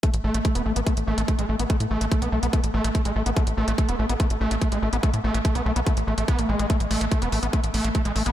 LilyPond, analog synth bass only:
\new Staff \with { instrumentName = "Analog synth bass" } { \clef bass \time 4/4 \key c \major \tempo 4 = 144 r16 a,,16 a,,16 a,,16 r16 e,,16 a,,16 a,,16 r16 a,,16 a,,16 a,,16 r16 a,,16 a,,16 a,,16 | r16 a,16 a,,16 a,,16 r16 b,,16 b,,16 b,,16 r16 a,,16 a,,16 a,,16 r16 a,,16 a,,16 a,,16 | r16 a,,16 a,,16 a,,16 r16 e,,16 a,,16 a,,16 r16 a,,16 a,,16 a,,16 r16 a,,16 a,,16 a,,16 | r16 a,16 a,,16 a,,16 r16 b,,16 b,,16 b,,16 r16 a,,16 a,,16 a,,16 r16 a,,16 a,,16 a,,16 |
r16 a,,16 a,,16 a,,16 r16 e,,16 a,,16 a,,16 r16 a,,16 a,,16 a,,16 r16 a,,16 a,,16 a,,16 | }